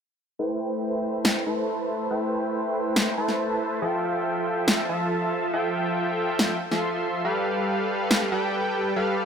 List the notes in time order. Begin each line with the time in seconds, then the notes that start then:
0.39 A3 E4 B4 C5 G5
1.25 snare
1.46 A3 E4 B4 C5 A5
2.11 A3 E4 B4 C5 G5
2.96 snare
3.18 A3 E4 B4 C5 A5
3.29 snare
3.82 F3 F4 A4 E5 G5
4.68 snare
4.89 F3 F4 A4 E5 A5
5.53 F3 F4 A4 E5 G5
6.39 snare
6.71 F3 F4 A4 E5 C6, snare
7.25 G3 G4 A4 B4 F5
8.11 snare
8.32 G3 G4 A4 B4 G5
8.96 G3 G4 A4 B4 F5